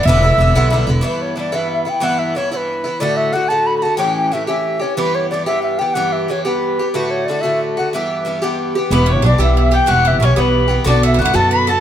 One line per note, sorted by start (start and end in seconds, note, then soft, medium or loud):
0.03 0.32 E1 loud
0.03 0.83 E4 medium
0.03 0.75 E5 loud
0.03 0.84 E6 medium
0.08 0.24 G2 medium
0.08 0.24 D3 medium
0.08 0.23 B3 loud
0.08 0.21 E4 medium
0.22 0.39 D3 soft
0.22 0.40 B3 medium
0.22 0.39 E4 medium
0.38 0.51 E1 loud
0.38 0.55 G2 medium
0.38 0.55 D3 medium
0.38 0.55 B3 medium
0.38 0.54 E4 medium
0.55 0.81 B1 loud
0.55 0.69 G2 medium
0.55 0.71 D3 medium
0.55 0.72 B3 medium
0.55 0.72 E4 medium
0.70 0.87 G2 medium
0.70 0.88 D3 medium
0.70 0.88 B3 medium
0.70 0.86 E4 medium
0.87 1.00 E1 loud
0.87 1.02 D3 soft
0.87 1.02 B3 soft
0.87 1.03 E4 medium
1.01 1.34 G2 medium
1.01 1.36 E3 medium
1.01 1.36 B3 medium
1.01 1.37 E4 medium
1.06 1.23 B4 medium
1.22 1.37 C#5 medium
1.36 1.52 G2 soft
1.36 1.52 E3 medium
1.36 1.51 B3 medium
1.36 1.51 E4 medium
1.36 1.57 D5 medium
1.52 1.87 G2 medium
1.52 1.87 E3 medium
1.52 1.85 B3 medium
1.52 1.84 E4 medium
1.52 1.72 E5 medium
1.73 1.91 E5 medium
1.85 2.00 E3 soft
1.85 2.00 B3 soft
1.85 2.02 E4 soft
1.85 2.05 G5 medium
2.00 2.34 G2 medium
2.00 2.35 E3 medium
2.00 2.35 B3 medium
2.00 2.36 E4 medium
2.00 2.20 F#5 loud
2.19 2.38 E5 medium
2.35 2.51 G2 soft
2.35 2.52 E3 medium
2.35 2.51 B3 medium
2.35 2.50 E4 medium
2.35 2.52 C#5 medium
2.51 2.86 G2 medium
2.51 2.86 E3 medium
2.51 2.84 B3 medium
2.51 2.83 E4 medium
2.51 2.57 C#5 medium
2.56 3.01 B4 medium
2.84 3.00 E3 soft
2.84 3.01 B3 soft
2.84 3.01 E4 soft
3.00 3.31 A2 medium
3.00 3.32 D3 medium
3.00 3.34 A3 medium
3.00 3.34 F#4 medium
3.00 3.18 D5 loud
3.17 3.34 E5 loud
3.33 3.50 A2 medium
3.33 3.50 D3 medium
3.33 3.50 A3 medium
3.33 3.49 F#4 medium
3.33 3.50 F#5 loud
3.48 3.85 A2 soft
3.48 3.84 D3 medium
3.48 3.82 A3 soft
3.48 3.81 F#4 medium
3.48 3.68 A5 loud
3.67 3.77 B5 medium
3.78 3.84 B5 medium
3.82 3.98 D3 soft
3.82 3.98 A3 soft
3.82 3.99 F#4 soft
3.82 3.97 A5 medium
3.97 4.30 A2 medium
3.97 4.33 E3 medium
3.97 4.32 C#4 medium
3.97 4.34 G4 medium
3.97 4.15 G5 medium
4.16 4.34 G5 medium
4.32 4.48 A2 medium
4.32 4.47 E3 medium
4.32 4.47 C#4 medium
4.32 4.46 G4 medium
4.32 4.47 E5 medium
4.47 4.82 A2 soft
4.47 4.83 E3 medium
4.47 4.80 C#4 medium
4.47 4.79 G4 medium
4.47 4.83 E5 medium
4.79 4.96 E3 soft
4.79 4.97 C#4 soft
4.79 4.97 G4 soft
4.79 4.96 C#5 medium
4.97 5.30 G2 medium
4.97 5.31 E3 medium
4.97 5.31 B3 medium
4.97 5.31 G4 medium
4.97 5.16 B4 loud
5.15 5.29 C#5 medium
5.30 5.47 G2 medium
5.30 5.47 E3 medium
5.30 5.46 B3 medium
5.30 5.45 G4 medium
5.30 5.45 D5 medium
5.46 5.81 G2 soft
5.46 5.81 E3 medium
5.46 5.80 B3 medium
5.46 5.77 G4 medium
5.46 5.62 E5 loud
5.63 5.80 E5 medium
5.79 5.95 E3 soft
5.79 5.96 B3 soft
5.79 5.96 G4 medium
5.79 5.95 G5 medium
5.94 6.27 G2 medium
5.94 6.28 E3 medium
5.94 6.29 B3 medium
5.94 6.30 G4 medium
5.94 6.14 F#5 loud
6.12 6.32 E5 medium
6.28 6.45 G2 medium
6.28 6.45 E3 medium
6.28 6.43 B3 medium
6.28 6.44 G4 medium
6.28 6.44 C#5 medium
6.45 6.79 G2 soft
6.45 6.79 E3 medium
6.45 6.78 B3 medium
6.45 6.78 G4 medium
6.45 6.91 B4 medium
6.79 6.94 E3 soft
6.79 6.95 B3 soft
6.79 6.95 G4 soft
6.93 7.27 A2 medium
6.93 7.28 D3 medium
6.93 7.28 A3 medium
6.93 7.28 F#4 medium
6.93 7.12 B4 medium
7.11 7.27 C#5 medium
7.25 7.44 A2 soft
7.25 7.44 D3 medium
7.25 7.43 D5 medium
7.30 7.42 A3 medium
7.30 7.42 F#4 medium
7.41 7.77 A3 medium
7.41 7.76 F#4 medium
7.41 7.60 E5 medium
7.45 7.78 A2 medium
7.45 7.78 D3 medium
7.77 7.94 D3 soft
7.77 7.94 A3 soft
7.77 7.93 F#4 medium
7.77 7.92 F#5 medium
7.93 8.24 G2 medium
7.93 8.25 E3 medium
7.93 8.26 B3 medium
7.93 8.27 G4 medium
7.93 8.55 E5 medium
8.25 8.41 G2 medium
8.25 8.42 E3 medium
8.25 8.42 B3 medium
8.25 8.41 G4 medium
8.42 8.76 G2 medium
8.42 8.78 E3 medium
8.42 8.77 B3 medium
8.42 8.75 G4 medium
8.75 8.90 E3 soft
8.75 8.91 B3 soft
8.75 8.91 G4 medium
8.90 9.23 E1 loud
8.90 9.21 G2 medium
8.90 9.23 E3 medium
8.90 9.06 B3 medium
8.90 9.24 B3 medium
8.90 9.25 G4 medium
8.90 9.14 B4 medium
8.90 9.07 B5 medium
9.06 9.24 C#4 medium
9.06 9.27 C#6 medium
9.12 9.26 C#5 medium
9.22 9.36 B1 medium
9.22 9.39 G2 medium
9.22 9.39 E3 medium
9.22 9.39 B3 medium
9.22 9.38 D4 medium
9.22 9.37 G4 medium
9.22 9.40 D5 medium
9.22 9.41 D6 medium
9.38 9.78 B1 medium
9.38 9.73 G2 medium
9.38 9.73 E3 medium
9.38 9.73 B3 medium
9.38 9.56 E4 medium
9.38 9.70 G4 medium
9.38 9.56 E6 medium
9.43 9.57 E5 medium
9.57 9.71 E4 medium
9.57 9.77 E5 medium
9.57 9.72 E6 medium
9.71 9.86 E3 soft
9.71 9.87 B3 soft
9.71 9.87 G4 medium
9.71 9.89 G6 medium
9.76 9.92 G5 medium
9.86 10.21 E1 loud
9.86 10.19 G2 medium
9.86 10.20 E3 medium
9.86 10.21 B3 medium
9.86 10.04 F#4 medium
9.86 10.22 G4 medium
9.86 10.19 F#6 medium
9.91 10.09 F#5 loud
10.05 10.22 E4 medium
10.05 10.26 E5 medium
10.20 10.34 B1 loud
10.20 10.37 G2 medium
10.20 10.37 E3 medium
10.20 10.36 B3 medium
10.20 10.36 C#4 medium
10.20 10.35 G4 medium
10.20 10.36 C#6 medium
10.25 10.42 C#5 medium
10.36 10.77 B1 medium
10.36 10.71 G2 medium
10.36 10.70 E3 medium
10.36 10.83 B3 medium
10.36 10.68 B3 medium
10.36 10.66 G4 medium
10.36 10.83 B5 medium
10.41 10.88 B4 medium
10.68 10.84 E3 soft
10.68 10.84 B3 soft
10.68 10.85 G4 soft
10.84 11.20 B1 loud
10.84 11.17 B2 medium
10.84 11.19 D3 medium
10.84 11.19 B3 medium
10.84 11.03 D4 medium
10.84 11.20 F#4 medium
10.84 11.04 D5 loud
10.84 11.05 D6 medium
11.03 11.13 E4 medium
11.03 11.20 E5 medium
11.03 11.20 E6 medium
11.14 11.31 F#2 medium
11.14 11.24 E4 medium
11.19 11.35 B2 medium
11.19 11.34 D3 medium
11.19 11.34 B3 medium
11.19 11.32 F#4 medium
11.19 11.35 F#6 medium
11.23 11.36 E4 loud
11.23 11.37 F#5 medium
11.33 11.74 F#2 loud
11.33 11.69 B2 medium
11.33 11.69 D3 medium
11.33 11.68 B3 medium
11.33 11.67 F#4 medium
11.33 11.51 A4 medium
11.33 11.52 A5 loud
11.33 11.54 A6 medium
11.51 11.67 B4 medium
11.51 11.67 B5 medium
11.51 11.71 B6 medium
11.67 11.80 B3 soft
11.67 11.80 F#4 medium
11.67 11.80 A4 medium
11.67 11.80 A5 medium
11.67 11.80 A6 loud
11.71 11.80 D3 soft